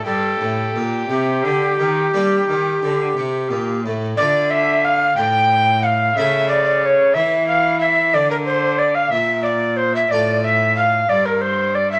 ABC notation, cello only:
X:1
M:12/8
L:1/8
Q:3/8=61
K:Gm
V:1 name="Cello" clef=bass
G,, A,, B,, C, D, E, G, E, D, C, B,, A,, | [K:Dm] D,3 A,,3 ^C,3 E,3 | D,3 B,,3 A,,3 G,,3 |]